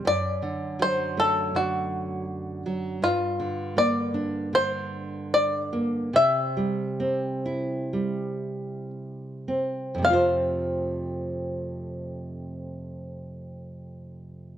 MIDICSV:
0, 0, Header, 1, 3, 480
1, 0, Start_track
1, 0, Key_signature, -1, "major"
1, 0, Tempo, 746269
1, 33, Time_signature, 4, 2, 24, 8
1, 2914, Tempo, 800000
1, 3874, Tempo, 862069
1, 4354, Tempo, 921659
1, 4834, Tempo, 1013514
1, 5314, Tempo, 1111111
1, 5794, Tempo, 1149425
1, 7690, End_track
2, 0, Start_track
2, 0, Title_t, "Five-string banjo"
2, 0, Program_c, 0, 105
2, 47, Note_on_c, 0, 74, 84
2, 526, Note_off_c, 0, 74, 0
2, 529, Note_on_c, 0, 72, 77
2, 767, Note_off_c, 0, 72, 0
2, 769, Note_on_c, 0, 69, 72
2, 1004, Note_on_c, 0, 66, 54
2, 1007, Note_off_c, 0, 69, 0
2, 1688, Note_off_c, 0, 66, 0
2, 1953, Note_on_c, 0, 65, 61
2, 2432, Note_on_c, 0, 74, 74
2, 2443, Note_off_c, 0, 65, 0
2, 2923, Note_off_c, 0, 74, 0
2, 2925, Note_on_c, 0, 72, 71
2, 3397, Note_off_c, 0, 72, 0
2, 3399, Note_on_c, 0, 74, 73
2, 3888, Note_off_c, 0, 74, 0
2, 3890, Note_on_c, 0, 76, 75
2, 5302, Note_off_c, 0, 76, 0
2, 5797, Note_on_c, 0, 77, 61
2, 7690, Note_off_c, 0, 77, 0
2, 7690, End_track
3, 0, Start_track
3, 0, Title_t, "Nylon-string guitar"
3, 0, Program_c, 1, 24
3, 32, Note_on_c, 1, 42, 55
3, 272, Note_on_c, 1, 50, 42
3, 510, Note_on_c, 1, 54, 50
3, 754, Note_on_c, 1, 57, 50
3, 987, Note_off_c, 1, 50, 0
3, 995, Note_on_c, 1, 50, 42
3, 1442, Note_off_c, 1, 54, 0
3, 1682, Note_off_c, 1, 57, 0
3, 1710, Note_on_c, 1, 54, 45
3, 1919, Note_off_c, 1, 42, 0
3, 1922, Note_off_c, 1, 50, 0
3, 1940, Note_off_c, 1, 54, 0
3, 1944, Note_on_c, 1, 43, 53
3, 2184, Note_on_c, 1, 50, 42
3, 2422, Note_on_c, 1, 58, 51
3, 2664, Note_on_c, 1, 62, 49
3, 2905, Note_off_c, 1, 50, 0
3, 2913, Note_on_c, 1, 50, 44
3, 3358, Note_off_c, 1, 58, 0
3, 3600, Note_off_c, 1, 62, 0
3, 3631, Note_on_c, 1, 58, 43
3, 3850, Note_off_c, 1, 43, 0
3, 3850, Note_off_c, 1, 50, 0
3, 3870, Note_off_c, 1, 58, 0
3, 3875, Note_on_c, 1, 48, 54
3, 4118, Note_on_c, 1, 55, 42
3, 4357, Note_on_c, 1, 60, 50
3, 4595, Note_on_c, 1, 64, 46
3, 4836, Note_off_c, 1, 55, 0
3, 4842, Note_on_c, 1, 55, 43
3, 5296, Note_off_c, 1, 60, 0
3, 5534, Note_off_c, 1, 64, 0
3, 5553, Note_on_c, 1, 60, 37
3, 5754, Note_on_c, 1, 41, 44
3, 5764, Note_off_c, 1, 48, 0
3, 5769, Note_on_c, 1, 48, 41
3, 5781, Note_off_c, 1, 55, 0
3, 5787, Note_on_c, 1, 57, 36
3, 5789, Note_off_c, 1, 60, 0
3, 5802, Note_on_c, 1, 60, 40
3, 5819, Note_on_c, 1, 65, 43
3, 5833, Note_on_c, 1, 72, 51
3, 7690, Note_off_c, 1, 41, 0
3, 7690, Note_off_c, 1, 48, 0
3, 7690, Note_off_c, 1, 57, 0
3, 7690, Note_off_c, 1, 60, 0
3, 7690, Note_off_c, 1, 65, 0
3, 7690, Note_off_c, 1, 72, 0
3, 7690, End_track
0, 0, End_of_file